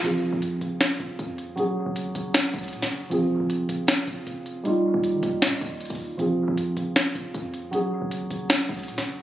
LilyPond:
<<
  \new Staff \with { instrumentName = "Felt piano" } { \time 4/4 \key f \minor \tempo 4 = 156 <f c' aes'>1 | <ges des' aes'>1 | <f c' aes'>1 | <g ees' f'>1 |
<f c' aes'>1 | <ges des' aes'>1 | }
  \new Staff \with { instrumentName = "808-style bass" } { \clef bass \time 4/4 \key f \minor f,,8. f,8. f,,4 f,,8 f,4 | r8. ges,,8 ges,16 ges,,4 des,8 bes,16 ges,,8. | f,,8. f,,8 f,16 f,,4 f,,8 f,,4 | r8. ees,8 ees16 ees,8 bes,16 ees,16 ees,8. ees,8. |
f,,8. f,8. f,,4 f,,8 f,4 | r8. ges,,8 ges,16 ges,,4 des,8 bes,16 ges,,8. | }
  \new DrumStaff \with { instrumentName = "Drums" } \drummode { \time 4/4 hh4 hh8 hh8 <hh sn>8 hh8 hh8 hh8 | hh4 hh8 hh8 <hh sn>8 hh32 hh32 hh32 hh32 hh16 sn16 hho8 | hh4 hh8 hh8 <hh sn>8 hh8 hh8 hh8 | hh4 hh8 hh8 <hh sn>8 hh8 hh32 hh32 hh32 hh32 hho8 |
hh4 hh8 hh8 <hh sn>8 hh8 hh8 hh8 | hh4 hh8 hh8 <hh sn>8 hh32 hh32 hh32 hh32 hh16 sn16 hho8 | }
>>